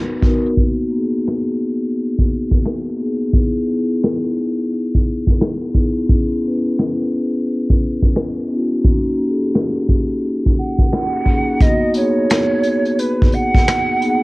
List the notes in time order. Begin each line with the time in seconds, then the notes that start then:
Already playing: B3 D#4 F#4 B4
0.21 B3 D#4, kick, closed hi-hat
0.25 F#4 A#4
0.46 closed hi-hat
0.57 kick
0.62 D#4 F#4
0.91 A#3 B3, closed hi-hat
0.95 D#4 G#4
1.27 finger snap, snare, closed hi-hat
1.60 closed hi-hat
1.96 closed hi-hat
2.19 kick
2.29 closed hi-hat
2.51 kick
2.65 finger snap, snare, closed hi-hat
2.96 A#3 B3, closed hi-hat
3.01 D#4 G#4
3.31 B3 D#4, kick, closed hi-hat
3.36 E4 G#4
3.66 B3 D#4, closed hi-hat
3.70 E4 G#4
4.04 finger snap, snare
4.36 closed hi-hat
4.59 closed hi-hat
4.72 closed hi-hat
4.95 kick
5.05 closed hi-hat
5.27 kick, snare
5.41 finger snap, snare
5.73 B3 D#4, kick
5.78 E4 G#4
6.07 B3 C#4, kick, closed hi-hat
6.11 E4 G#4
6.41 B3 C#4, closed hi-hat
6.45 E4 B4
6.67 closed hi-hat
6.78 finger snap, snare, closed hi-hat
7.12 closed hi-hat
7.47 closed hi-hat
7.70 kick
7.80 closed hi-hat
8.03 kick, closed hi-hat
8.16 finger snap, snare, closed hi-hat
8.50 B3 C#4, closed hi-hat
8.54 E4 F#4
8.74 closed hi-hat
8.84 A#3 C#4, kick, closed hi-hat
8.89 D#4 F#4
9.17 A#3 C#4, closed hi-hat
9.21 D#4 G4
9.30 G#4
9.43 closed hi-hat
9.55 finger snap, snare
9.88 kick, closed hi-hat
10.24 closed hi-hat
10.46 kick
10.56 F#5, closed hi-hat
10.79 kick, snare
10.93 finger snap, snare, closed hi-hat
11.23 A#3 C#4 D#4, kick, closed hi-hat
11.30 G#4
11.61 A#3 B3 D#5, kick, closed hi-hat
11.65 D#4 F#4
11.93 A#3 B3 C#5, closed hi-hat
11.97 D#4 G#4
12.30 finger snap, snare, closed hi-hat
12.63 closed hi-hat
12.85 closed hi-hat
12.99 B4, closed hi-hat
13.22 kick
13.32 F#5, closed hi-hat
13.54 kick, snare, closed hi-hat
13.68 finger snap, snare, closed hi-hat
13.99 A#3 B3, closed hi-hat
14.03 D#4 G#4